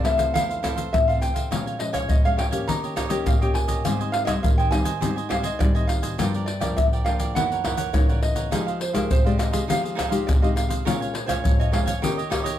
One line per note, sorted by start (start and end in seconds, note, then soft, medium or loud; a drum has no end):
0.00 0.31 C3 medium
0.00 0.58 E3 medium
0.00 0.18 E4 soft
0.04 0.59 A3 medium
0.04 0.59 C4 medium
0.04 0.18 A4 soft
0.04 0.17 C5 medium
0.04 0.33 E5 medium
0.04 0.16 F5 soft
0.04 pandeiro medium
0.04 tamborim medium
0.17 0.33 A4 medium
0.17 0.33 C5 medium
0.17 0.32 F5 medium
0.17 pandeiro medium
0.17 shaker medium
0.17 surdo soft
0.34 0.90 F2 medium
0.34 0.48 E4 medium
0.34 0.48 A4 medium
0.34 0.48 C5 medium
0.34 0.92 F5 loud
0.34 0.48 F5 medium
0.34 pandeiro medium
0.34 shaker medium
0.34 surdo medium
0.49 0.62 A4 soft
0.49 0.63 C5 soft
0.49 0.63 F5 soft
0.49 pandeiro soft
0.49 shaker soft
0.62 0.88 E3 soft
0.62 0.88 A3 soft
0.62 0.88 C4 medium
0.62 0.77 E4 medium
0.62 0.76 A4 medium
0.62 0.75 C5 medium
0.62 0.75 F5 medium
0.62 pandeiro medium
0.62 tamborim medium
0.62 shaker medium
0.62 surdo soft
0.76 1.06 A4 medium
0.76 1.06 C5 medium
0.76 1.05 F5 medium
0.76 pandeiro soft
0.76 shaker medium
0.93 1.49 C3 medium
0.93 1.30 E3 soft
0.93 1.31 A3 soft
0.93 1.31 C4 medium
0.93 1.07 E5 loud
0.93 pandeiro medium
0.93 tamborim medium
0.93 shaker medium
0.93 surdo loud
1.07 1.20 A4 soft
1.07 1.20 C5 medium
1.07 1.20 F5 medium
1.07 1.21 F5 medium
1.07 pandeiro soft
1.07 shaker soft
1.20 1.80 G5 medium
1.20 muted cavaquinho stroke soft
1.20 pandeiro medium
1.20 shaker medium
1.34 1.50 A4 soft
1.34 1.49 C5 soft
1.34 1.49 F5 soft
1.34 pandeiro medium
1.34 shaker medium
1.34 surdo soft
1.51 2.07 A#2 medium
1.51 1.76 F3 medium
1.51 1.76 G#3 medium
1.51 1.76 C#4 medium
1.51 1.65 A#4 medium
1.51 1.65 C#5 medium
1.51 1.65 F5 medium
1.51 1.65 G#5 medium
1.51 pandeiro medium
1.51 tamborim medium
1.51 shaker medium
1.51 surdo medium
1.66 1.78 C#5 soft
1.66 1.78 F5 soft
1.66 1.78 G#5 soft
1.66 pandeiro soft
1.66 shaker soft
1.79 2.07 F3 medium
1.79 2.08 G#3 medium
1.79 2.08 C#4 medium
1.79 1.93 D#5 medium
1.79 muted cavaquinho stroke soft
1.79 pandeiro medium
1.93 2.08 C#5 medium
1.93 2.23 C#5 medium
1.93 2.23 F5 medium
1.93 2.22 G#5 medium
1.93 pandeiro medium
1.93 tamborim medium
1.93 shaker medium
1.93 surdo soft
2.09 2.65 F2 medium
2.09 2.24 D#5 medium
2.09 pandeiro medium
2.09 shaker medium
2.09 surdo loud
2.24 2.49 F3 medium
2.24 2.50 G#3 medium
2.24 2.50 C#4 medium
2.24 2.37 C#5 soft
2.24 2.37 F5 soft
2.24 2.38 F5 medium
2.24 2.38 G#5 soft
2.24 pandeiro soft
2.24 shaker soft
2.37 2.52 A#4 soft
2.37 2.52 C#5 soft
2.37 2.51 F5 medium
2.37 2.46 G5 medium
2.37 2.50 G#5 medium
2.37 pandeiro medium
2.37 tamborim medium
2.51 3.06 A#3 medium
2.51 3.07 C#4 medium
2.51 3.07 G4 medium
2.51 2.67 C#5 soft
2.51 2.66 F5 medium
2.51 2.66 G#5 medium
2.51 pandeiro medium
2.51 shaker medium
2.51 surdo soft
2.67 3.24 D#3 medium
2.67 2.81 D#4 medium
2.67 2.82 G4 medium
2.67 2.82 C#5 medium
2.67 2.82 D#5 medium
2.67 3.22 A#5 loud
2.67 pandeiro medium
2.67 shaker medium
2.67 surdo medium
2.83 2.95 G4 soft
2.83 2.96 C#5 soft
2.83 2.96 D#5 soft
2.83 pandeiro soft
2.83 shaker soft
2.96 3.10 D#4 medium
2.96 3.10 G4 medium
2.96 3.09 C#5 medium
2.96 3.08 D#5 medium
2.96 pandeiro medium
2.96 tamborim medium
2.96 shaker medium
2.96 surdo soft
3.09 3.35 A#3 medium
3.09 3.36 C#4 medium
3.09 3.36 G4 medium
3.09 3.40 G4 medium
3.09 3.39 C#5 medium
3.09 3.39 D#5 medium
3.09 pandeiro medium
3.09 shaker medium
3.26 3.82 A#2 medium
3.26 3.41 F5 loud
3.26 pandeiro medium
3.26 tamborim medium
3.26 shaker medium
3.26 surdo medium
3.41 3.83 A#3 medium
3.41 3.83 C#4 medium
3.41 3.83 G4 medium
3.41 3.53 G4 soft
3.41 3.54 C#5 soft
3.41 3.54 D#5 soft
3.41 3.55 G5 medium
3.41 pandeiro soft
3.41 shaker soft
3.54 4.12 G#5 medium
3.54 muted cavaquinho stroke soft
3.54 pandeiro medium
3.68 3.83 G4 soft
3.68 3.83 C#5 soft
3.68 3.83 D#5 soft
3.68 pandeiro medium
3.68 shaker medium
3.68 surdo soft
3.85 4.41 G#2 medium
3.85 4.24 G3 medium
3.85 4.24 C4 medium
3.85 4.25 D#4 medium
3.85 3.98 G4 medium
3.85 3.99 C5 medium
3.85 3.99 D#5 medium
3.85 3.98 G#5 medium
3.85 pandeiro medium
3.85 tamborim medium
3.85 shaker medium
3.85 surdo medium
4.00 4.12 C5 soft
4.00 4.12 D#5 soft
4.00 4.13 G#5 medium
4.00 pandeiro soft
4.00 shaker soft
4.12 4.25 F5 medium
4.12 muted cavaquinho stroke soft
4.12 pandeiro medium
4.25 4.67 G3 medium
4.25 4.67 C4 medium
4.25 4.67 D#4 medium
4.25 4.56 C5 medium
4.25 4.30 D#5 medium
4.25 4.56 D#5 medium
4.25 4.55 G#5 medium
4.25 pandeiro medium
4.25 tamborim medium
4.25 shaker medium
4.25 surdo soft
4.43 4.99 D#3 medium
4.43 4.48 F5 medium
4.43 pandeiro medium
4.43 shaker medium
4.43 surdo medium
4.58 4.70 C5 soft
4.58 4.71 D#5 soft
4.58 4.70 G5 medium
4.58 4.72 G#5 soft
4.58 pandeiro soft
4.58 shaker soft
4.71 4.89 G3 medium
4.71 4.90 C4 medium
4.71 4.90 D#4 medium
4.71 4.85 G4 soft
4.71 4.85 C5 medium
4.71 4.84 D#5 medium
4.71 5.32 G#5 loud
4.71 4.83 G#5 medium
4.71 pandeiro medium
4.71 tamborim medium
4.71 shaker medium
4.84 5.00 C5 medium
4.84 5.00 D#5 medium
4.84 4.99 G#5 medium
4.84 pandeiro medium
4.84 shaker medium
4.84 surdo soft
5.01 5.58 G#2 medium
5.01 5.19 G3 medium
5.01 5.19 C4 soft
5.01 5.20 D#4 medium
5.01 5.15 G4 medium
5.01 5.15 C5 medium
5.01 5.15 D#5 medium
5.01 5.15 G#5 medium
5.01 pandeiro medium
5.01 shaker medium
5.01 surdo medium
5.16 5.29 C5 soft
5.16 5.29 D#5 soft
5.16 5.30 G#5 soft
5.16 pandeiro soft
5.16 shaker soft
5.29 5.48 G3 medium
5.29 5.48 C4 medium
5.29 5.48 D#4 medium
5.29 5.43 G4 medium
5.29 5.44 C5 medium
5.29 5.43 D#5 medium
5.29 5.45 F5 medium
5.29 5.42 G#5 medium
5.29 pandeiro medium
5.29 tamborim medium
5.29 surdo soft
5.43 5.73 C5 medium
5.43 5.73 D#5 medium
5.43 5.59 D#5 medium
5.43 5.72 G#5 medium
5.43 pandeiro medium
5.43 shaker medium
5.59 6.16 D#3 medium
5.59 6.14 G3 medium
5.59 6.14 C4 medium
5.59 6.15 D#4 medium
5.59 5.74 D5 medium
5.59 pandeiro medium
5.59 tamborim medium
5.59 shaker medium
5.59 surdo loud
5.75 5.87 C5 soft
5.75 5.90 D#5 medium
5.75 5.87 D#5 soft
5.75 5.88 G#5 medium
5.75 pandeiro soft
5.75 shaker soft
5.87 6.49 F5 medium
5.87 muted cavaquinho stroke soft
5.87 pandeiro medium
5.87 shaker medium
6.02 6.17 C5 soft
6.02 6.17 D#5 soft
6.02 6.16 G#5 soft
6.02 pandeiro medium
6.02 shaker medium
6.02 surdo soft
6.18 6.74 G2 medium
6.18 6.46 F3 medium
6.18 6.46 A#3 medium
6.18 6.46 D4 medium
6.18 6.32 F4 medium
6.18 6.32 A#4 medium
6.18 6.32 D5 medium
6.18 6.33 G5 medium
6.18 pandeiro medium
6.18 tamborim medium
6.18 shaker medium
6.18 surdo medium
6.34 6.46 A#4 soft
6.34 6.46 D5 soft
6.34 6.47 G5 soft
6.34 pandeiro soft
6.34 shaker soft
6.46 6.77 D5 medium
6.46 muted cavaquinho stroke soft
6.46 pandeiro medium
6.60 7.01 F3 medium
6.60 7.01 A#3 medium
6.60 7.02 D4 medium
6.60 6.90 A#4 medium
6.60 6.90 D5 medium
6.60 6.89 G5 medium
6.60 pandeiro medium
6.60 tamborim medium
6.60 shaker medium
6.60 surdo soft
6.76 7.33 D3 medium
6.76 6.84 E5 medium
6.76 pandeiro medium
6.76 shaker medium
6.76 surdo medium
6.93 7.05 A#4 soft
6.93 7.06 D5 soft
6.93 7.06 G5 medium
6.93 pandeiro soft
6.93 shaker soft
7.04 7.33 F3 medium
7.04 7.33 A#3 medium
7.04 7.33 D4 medium
7.04 7.19 F4 medium
7.04 7.20 A#4 medium
7.04 7.19 D5 soft
7.04 7.32 F5 medium
7.04 7.18 G5 medium
7.04 pandeiro medium
7.04 tamborim medium
7.19 7.34 A#4 medium
7.19 7.34 D5 medium
7.19 7.34 G5 medium
7.19 pandeiro medium
7.19 shaker medium
7.19 surdo soft
7.35 7.91 F#2 medium
7.35 7.60 E3 medium
7.35 7.60 A#3 soft
7.35 7.60 D#4 medium
7.35 7.49 E4 medium
7.35 7.50 A#4 medium
7.35 7.50 C#5 medium
7.35 7.93 F#5 medium
7.35 7.50 F#5 medium
7.35 pandeiro medium
7.35 shaker medium
7.35 surdo medium
7.51 7.63 A#4 soft
7.51 7.64 C#5 soft
7.51 7.64 F#5 soft
7.51 pandeiro soft
7.51 shaker soft
7.64 7.89 E3 soft
7.64 7.89 A#3 medium
7.64 7.89 D#4 medium
7.64 7.78 E4 medium
7.64 7.78 A#4 medium
7.64 7.77 C#5 medium
7.64 7.76 F#5 medium
7.64 pandeiro medium
7.64 tamborim medium
7.64 surdo soft
7.77 8.07 A#4 medium
7.77 8.07 C#5 medium
7.77 8.06 F#5 medium
7.77 pandeiro medium
7.77 shaker medium
7.93 8.49 C#3 medium
7.93 8.48 E3 medium
7.93 8.48 A#3 medium
7.93 8.48 D#4 medium
7.93 8.09 C#5 medium
7.93 pandeiro medium
7.93 tamborim medium
7.93 shaker medium
7.93 surdo loud
8.09 8.21 A#4 soft
8.09 8.21 C#5 soft
8.09 8.22 D5 medium
8.09 8.21 F#5 soft
8.09 pandeiro soft
8.09 shaker soft
8.22 8.83 D#5 medium
8.22 muted cavaquinho stroke soft
8.22 pandeiro medium
8.35 8.51 A#4 soft
8.35 8.50 C#5 soft
8.35 8.50 F#5 soft
8.35 pandeiro medium
8.35 shaker medium
8.35 surdo soft
8.51 9.08 F3 medium
8.51 8.79 G#3 medium
8.51 8.65 D#4 medium
8.51 8.80 D#4 medium
8.51 8.80 G4 medium
8.51 8.65 G#4 medium
8.51 8.66 C5 medium
8.51 8.65 F5 medium
8.51 pandeiro medium
8.51 tamborim medium
8.51 shaker medium
8.51 surdo medium
8.67 8.79 G#4 soft
8.67 8.79 C5 soft
8.67 8.79 F5 medium
8.67 pandeiro soft
8.67 shaker soft
8.80 8.94 C5 medium
8.80 muted cavaquinho stroke soft
8.80 pandeiro medium
8.93 9.19 G#3 medium
8.93 9.20 D#4 medium
8.93 9.20 G4 medium
8.93 9.23 G#4 soft
8.93 9.09 A#4 medium
8.93 9.23 C5 medium
8.93 9.23 F5 medium
8.93 pandeiro medium
8.93 tamborim medium
8.93 shaker medium
8.93 surdo soft
9.11 9.66 C3 medium
9.11 9.25 C5 medium
9.11 pandeiro medium
9.11 shaker medium
9.11 surdo loud
9.25 9.50 G#3 medium
9.25 9.50 D#4 medium
9.25 9.50 G4 medium
9.25 9.37 G#4 soft
9.25 9.38 C5 soft
9.25 9.39 D5 medium
9.25 9.38 F5 soft
9.25 pandeiro soft
9.25 shaker soft
9.38 9.52 D#4 soft
9.38 9.52 G#4 soft
9.38 9.51 C5 medium
9.38 9.69 D#5 medium
9.38 9.50 F5 medium
9.38 pandeiro medium
9.38 tamborim medium
9.38 shaker medium
9.52 9.63 G#3 medium
9.52 9.64 D#4 medium
9.52 9.64 G4 medium
9.52 9.67 G#4 medium
9.52 9.67 C5 medium
9.52 9.66 F5 medium
9.52 pandeiro medium
9.52 shaker medium
9.52 surdo soft
9.68 10.24 F3 medium
9.68 10.08 G#3 medium
9.68 9.82 D#4 medium
9.68 10.08 D#4 medium
9.68 10.08 G4 medium
9.68 9.82 G#4 medium
9.68 9.82 C5 medium
9.68 9.81 F5 medium
9.68 10.30 F5 medium
9.68 pandeiro medium
9.68 shaker medium
9.68 surdo medium
9.83 9.95 G#4 soft
9.83 9.95 C5 soft
9.83 9.96 F5 soft
9.83 pandeiro soft
9.83 shaker soft
9.95 10.10 D#4 medium
9.95 10.10 G#4 medium
9.95 10.09 C5 medium
9.95 10.08 F5 medium
9.95 pandeiro medium
9.95 tamborim medium
9.95 shaker medium
9.95 surdo soft
10.09 10.36 G#3 medium
10.09 10.37 D#4 medium
10.09 10.37 G4 medium
10.09 10.40 G#4 medium
10.09 10.40 C5 medium
10.09 10.39 F5 medium
10.09 pandeiro medium
10.09 shaker medium
10.27 10.83 C3 medium
10.27 10.32 D5 medium
10.27 pandeiro medium
10.27 tamborim medium
10.27 shaker medium
10.27 surdo loud
10.42 10.81 G#3 medium
10.42 10.81 D#4 medium
10.42 10.82 G4 medium
10.42 10.55 G#4 soft
10.42 10.55 C5 soft
10.42 10.47 D#5 medium
10.42 10.55 F5 medium
10.42 pandeiro soft
10.42 shaker soft
10.55 11.16 F5 medium
10.55 muted cavaquinho stroke soft
10.55 pandeiro medium
10.55 shaker medium
10.55 surdo soft
10.69 10.84 G#4 soft
10.69 10.84 C5 soft
10.69 10.83 F5 soft
10.69 pandeiro medium
10.69 shaker medium
10.69 surdo soft
10.85 11.41 A#2 medium
10.85 11.13 G#3 medium
10.85 11.13 C#4 medium
10.85 11.14 F4 medium
10.85 10.99 A#4 medium
10.85 10.99 C#5 medium
10.85 11.00 F5 medium
10.85 10.99 G#5 medium
10.85 pandeiro medium
10.85 tamborim medium
10.85 shaker medium
10.85 surdo medium
11.00 11.13 C#5 soft
11.00 11.13 F5 soft
11.00 11.14 G#5 medium
11.00 pandeiro soft
11.00 shaker soft
11.14 11.26 C#5 medium
11.14 muted cavaquinho stroke soft
11.14 pandeiro medium
11.26 11.68 G#3 medium
11.26 11.68 C#4 medium
11.26 11.68 F4 medium
11.26 11.31 C5 medium
11.26 11.57 C#5 medium
11.26 11.57 F5 medium
11.26 11.57 G#5 medium
11.26 pandeiro medium
11.26 tamborim medium
11.26 shaker medium
11.26 surdo soft
11.44 12.00 F2 medium
11.44 11.59 C#5 medium
11.44 pandeiro medium
11.44 shaker medium
11.44 surdo loud
11.59 11.71 C#5 soft
11.59 11.72 D#5 medium
11.59 11.72 F5 soft
11.59 11.73 G#5 soft
11.59 pandeiro soft
11.59 shaker soft
11.72 11.92 G#3 medium
11.72 11.92 C#4 soft
11.72 11.92 F4 medium
11.72 11.86 A#4 soft
11.72 11.86 C#5 medium
11.72 12.02 F5 medium
11.72 11.86 F5 medium
11.72 11.84 G#5 medium
11.72 pandeiro medium
11.72 tamborim medium
11.86 12.01 C#5 medium
11.86 12.01 F5 medium
11.86 12.00 G#5 medium
11.86 pandeiro medium
11.86 shaker medium
11.86 surdo soft
12.02 12.58 D#3 medium
12.02 12.20 A#3 soft
12.02 12.20 C#4 medium
12.02 12.16 D#4 medium
12.02 12.16 G4 medium
12.02 12.20 G4 medium
12.02 12.16 C#5 medium
12.02 12.16 D#5 medium
12.02 12.57 G5 medium
12.02 pandeiro medium
12.02 shaker medium
12.02 surdo medium
12.17 12.30 G4 soft
12.17 12.30 C#5 soft
12.17 12.30 D#5 medium
12.17 pandeiro soft
12.17 shaker soft
12.30 12.48 A#3 medium
12.30 12.49 C#4 medium
12.30 12.44 D#4 medium
12.30 12.44 G4 medium
12.30 12.49 G4 medium
12.30 12.43 C#5 medium
12.30 12.42 D#5 medium
12.30 pandeiro medium
12.30 tamborim medium
12.30 surdo soft
12.43 12.59 G4 medium
12.43 12.59 C#5 medium
12.43 12.59 D#5 medium
12.43 pandeiro medium
12.43 shaker medium